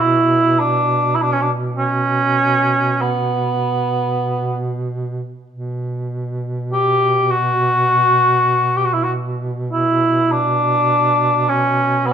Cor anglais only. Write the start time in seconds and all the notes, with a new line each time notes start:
0.00 E4
0.59 D4
1.15 E4
1.22 D4
1.32 C#4
1.41 D4
1.78 C#4
3.01 B3
6.73 G4
7.31 F#4
8.77 G4
8.85 F#4
8.94 E4
9.04 F#4
9.72 E4
10.32 D4
11.49 C#4
12.06 B3